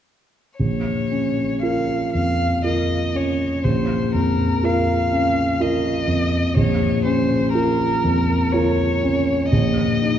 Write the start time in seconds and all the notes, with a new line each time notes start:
0.59 A#1 C#5
1.10 C#4
1.62 F4 A#4 F5
2.13 F2 F5
2.64 F4 A#4 D#5
3.14 C#4 C#5
3.64 A#1 C5
4.14 F2 A#4
4.63 F4 A#4 F5
5.11 C#4
5.60 F4 A#4 D#5
6.07 F2
6.56 A#1 C#5
7.05 C#4 C5
7.54 F4 A#4
8.04 F2
8.52 F4 A#4 C#5
9.03 C#4
9.50 A#1 D#5
10.02 D#4